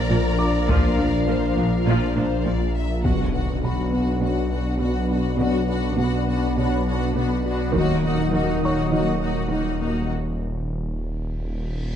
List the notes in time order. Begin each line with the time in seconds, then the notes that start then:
Already playing: A#1 F3 D4 F4 A#4 D5 A#5
0.11 A#1 A#2 F3 A#3 F4
0.39 D6
0.69 A#1 A#2 F3 A#3 F4 F5, taiko
0.98 A#1 A#2 F3 D4
1.28 A#1 A#2 F3 A#3 A#4 C5
1.58 A#1 A#2 F3 D4 F4 A#4
1.87 A#1 A#2 F3 A#3 F4 D5
2.16 A#1 A#2 F3 D4 C5
2.45 A#1 A#2 F3 A#3 F4 D5
2.75 E5
3.03 B1 B2 F#3 B3 D4 F#4 B4 F#5, taiko, impact
3.33 B3 D4 F#4 B4 F#5
3.63 B2 B3 D4 F#4 F#5 B5
3.92 B3 D4 F#4 F#5
4.22 B2 F#3 B3 D4 F#4 F#5
4.51 B3 D4 F#4 F#5
4.81 B2 B3 D4 F#4 F#5
5.10 B3 D4 F#4 F#5
5.40 B2 F#3 B3 D4 F#4 F#5
5.69 B3 D4 F#4 B4 F#5
5.98 B2 B3 D4 F#4 F#5
6.28 B3 D4 F#4 F#5
6.57 B2 F#3 B3 D4 F#4 F#5
6.87 B3 D4 F#4 F#5
7.16 B2 B3 D4 F#4 F#5
7.46 B3 D4 F#4 F#5
7.74 D#1 D#3 F#3 A#3 D#4 F#4 D#5 F#5, taiko
8.04 A#3 D#4 F#4 F#5
8.34 D#3 A#3 D#4 F#4 F#5
8.63 D#3 A#3 D#4 F#4 C#5 F#5 C#6, taiko
8.92 D#3 F#3 A#3 D#4 F#4 F#5
9.22 A#3 D#4 F#4 F#5
9.51 D#3 A#3 D#4 F#4 F#5
9.81 A#3 D#4 F#4 F#5
10.11 reverse cymbal